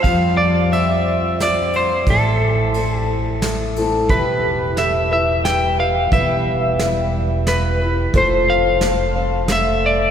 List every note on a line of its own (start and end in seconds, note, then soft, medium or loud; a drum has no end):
0.03 2.03 F2 medium
0.03 0.72 F3 medium
0.03 0.70 G3 medium
0.03 0.72 C4 medium
0.03 0.72 F4 medium
0.03 0.74 C5 medium
0.03 0.37 F5 medium
0.03 kick medium
0.03 ride soft
0.37 0.72 D5 medium
0.71 1.38 G3 medium
0.71 1.39 C4 medium
0.71 1.40 F4 medium
0.71 1.41 C5 medium
0.71 1.36 E5 medium
0.71 ride soft
1.39 2.07 G3 soft
1.39 2.07 C4 medium
1.39 2.08 F4 medium
1.39 2.08 C5 medium
1.39 1.76 D5 medium
1.39 snare medium
1.39 ride soft
1.73 2.10 C5 medium
1.73 ride soft
2.07 4.06 A1 medium
2.07 2.75 A2 medium
2.07 2.75 E3 medium
2.07 2.75 A3 medium
2.07 2.75 C4 medium
2.07 2.76 E4 medium
2.07 2.76 A4 medium
2.07 2.98 A4 medium
2.07 kick medium
2.07 ride soft
2.74 3.40 A3 medium
2.74 3.42 C4 medium
2.74 3.42 E4 medium
2.74 3.43 A4 medium
2.74 ride soft
2.98 3.40 G4 medium
3.42 3.76 A3 medium
3.42 3.76 C4 medium
3.42 3.77 E4 medium
3.42 3.77 A4 medium
3.42 snare medium
3.42 ride soft
3.76 4.10 A3 soft
3.76 4.11 C4 soft
3.76 4.10 E4 soft
3.76 4.11 A4 soft
3.76 ride soft
4.09 6.08 E1 medium
4.09 4.78 E3 medium
4.09 4.77 G3 medium
4.09 4.77 E4 medium
4.09 4.78 G4 medium
4.09 4.80 B4 medium
4.09 4.79 B4 medium
4.09 kick medium
4.09 closed hi-hat soft
4.77 5.12 G3 medium
4.77 5.12 E4 medium
4.77 5.12 G4 medium
4.77 5.10 B4 medium
4.77 5.12 E5 medium
4.77 snare medium
4.77 closed hi-hat soft
5.11 5.45 E4 soft
5.11 5.46 G4 soft
5.11 5.45 B4 soft
5.11 5.45 E5 medium
5.45 5.79 G3 medium
5.45 5.79 E4 medium
5.45 5.80 G4 medium
5.45 5.78 B4 medium
5.45 5.79 G5 medium
5.45 snare medium
5.45 closed hi-hat soft
5.79 6.13 G4 soft
5.79 6.13 B4 soft
5.79 6.12 F5 medium
6.12 8.10 E1 medium
6.12 6.80 E3 medium
6.12 6.78 G3 medium
6.12 6.80 E4 medium
6.12 6.81 G4 medium
6.12 6.80 B4 medium
6.12 7.52 E5 medium
6.12 kick medium
6.12 closed hi-hat soft
6.79 7.46 G3 medium
6.79 7.46 E4 medium
6.79 7.47 G4 medium
6.79 7.48 B4 medium
6.79 snare medium
6.79 closed hi-hat soft
7.47 7.81 G3 medium
7.47 7.81 E4 medium
7.47 7.81 G4 medium
7.47 7.95 B4 medium
7.47 7.80 B4 medium
7.47 snare medium
7.47 closed hi-hat medium
7.81 8.15 E4 soft
7.81 8.15 G4 soft
7.81 8.15 B4 soft
8.13 10.11 F1 medium
8.13 8.82 F3 medium
8.13 8.80 A3 medium
8.13 8.81 C4 medium
8.13 8.82 A4 medium
8.13 8.82 C5 medium
8.13 kick medium
8.13 closed hi-hat medium
8.18 8.51 C5 medium
8.50 9.52 F5 loud
8.81 9.15 A3 medium
8.81 9.16 C4 medium
8.81 9.15 A4 medium
8.81 9.14 C5 medium
8.81 snare medium
8.81 closed hi-hat medium
9.15 9.49 C4 soft
9.15 9.49 A4 soft
9.15 9.49 C5 soft
9.48 10.11 A3 medium
9.48 10.11 C4 medium
9.48 10.11 A4 medium
9.48 10.11 C5 medium
9.48 9.85 E5 medium
9.48 snare medium
9.48 closed hi-hat soft
9.86 10.11 D5 medium